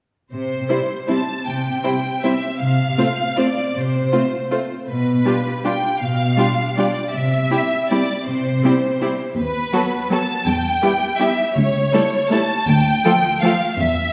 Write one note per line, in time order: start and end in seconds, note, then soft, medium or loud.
0.33 0.64 C3 soft
0.33 1.06 C5 soft
0.69 0.77 G3 soft
0.69 0.77 C4 soft
0.69 0.77 E4 soft
0.69 0.77 C5 soft
1.08 1.17 G3 soft
1.08 1.17 C4 soft
1.08 1.16 E4 soft
1.08 1.16 C5 soft
1.08 1.45 A5 soft
1.46 1.77 C3 soft
1.46 2.24 G5 soft
1.84 1.92 G3 soft
1.84 1.92 C4 soft
1.84 1.92 E4 soft
1.84 1.92 C5 soft
2.22 2.32 G3 soft
2.22 2.32 C4 soft
2.22 2.32 E4 soft
2.22 2.32 C5 soft
2.22 2.60 E5 soft
2.60 2.92 C3 soft
2.60 3.36 F5 soft
2.98 3.06 A3 soft
2.98 3.06 C4 soft
2.98 3.07 F4 soft
2.98 3.06 C5 soft
3.36 3.46 A3 soft
3.36 3.46 C4 soft
3.36 3.44 F4 soft
3.36 3.44 C5 soft
3.36 3.76 D5 soft
3.76 4.06 C3 soft
3.76 4.71 C5 soft
4.12 4.21 A3 soft
4.12 4.21 C4 soft
4.12 4.20 F4 soft
4.12 4.20 C5 soft
4.51 4.59 A3 soft
4.51 4.59 C4 soft
4.51 4.59 F4 soft
4.51 4.59 C5 soft
4.88 5.20 B2 soft
4.88 5.61 B4 soft
5.25 5.33 G3 soft
5.25 5.33 D4 soft
5.25 5.34 F4 soft
5.25 5.34 G4 soft
5.64 5.72 G3 soft
5.64 5.72 D4 soft
5.64 5.73 F4 soft
5.64 5.73 G4 soft
5.64 6.02 G5 soft
6.01 6.32 B2 soft
6.01 6.75 F5 medium
6.37 6.45 G3 soft
6.37 6.45 D4 soft
6.37 6.46 F4 soft
6.37 6.46 G4 soft
6.77 6.85 G3 soft
6.77 6.85 D4 soft
6.77 6.86 F4 soft
6.77 6.86 G4 soft
6.77 7.13 D5 soft
7.14 7.44 C3 soft
7.14 7.91 E5 medium
7.51 7.59 G3 soft
7.51 7.59 C4 soft
7.51 7.59 E4 soft
7.51 7.59 G4 soft
7.90 7.98 G3 soft
7.90 7.98 C4 soft
7.90 7.99 E4 soft
7.90 7.99 G4 soft
7.90 8.26 D5 medium
8.27 8.57 C3 soft
8.27 9.19 C5 medium
8.63 8.71 G3 soft
8.63 8.71 C4 soft
8.63 8.72 E4 soft
8.63 8.72 G4 soft
9.01 9.10 G3 soft
9.01 9.10 C4 soft
9.01 9.09 E4 soft
9.01 9.09 G4 soft
9.37 9.65 D#2 soft
9.37 10.07 B4 medium
9.73 9.82 F#3 soft
9.73 9.81 B3 soft
9.73 9.81 F#4 soft
9.73 9.81 A4 soft
10.10 10.18 F#3 soft
10.10 10.18 B3 soft
10.10 10.20 F#4 soft
10.10 10.19 A4 soft
10.10 10.47 A5 medium
10.47 10.75 E2 medium
10.47 11.20 G5 medium
10.82 10.90 G3 soft
10.82 10.90 B3 soft
10.82 10.90 E4 soft
10.82 10.90 G4 soft
11.19 11.27 G3 soft
11.19 11.27 B3 soft
11.19 11.28 E4 soft
11.19 11.28 G4 soft
11.19 11.56 E5 medium
11.56 11.85 C#2 medium
11.56 12.30 C#5 medium
11.92 12.01 G3 soft
11.92 12.00 A3 soft
11.92 12.01 E4 soft
11.92 12.02 A4 soft
12.30 12.38 G3 soft
12.30 12.38 A3 soft
12.30 12.39 E4 soft
12.30 12.40 A4 soft
12.30 12.68 A5 medium
12.68 12.98 D2 medium
12.68 13.43 G5 medium
13.04 13.12 F3 soft
13.04 13.13 A3 soft
13.04 13.13 F4 soft
13.04 13.13 A4 soft
13.41 13.50 F3 soft
13.41 13.50 A3 soft
13.41 13.53 F4 soft
13.41 13.52 A4 soft
13.41 13.78 F5 medium
13.79 14.08 E2 medium
13.79 14.13 E5 medium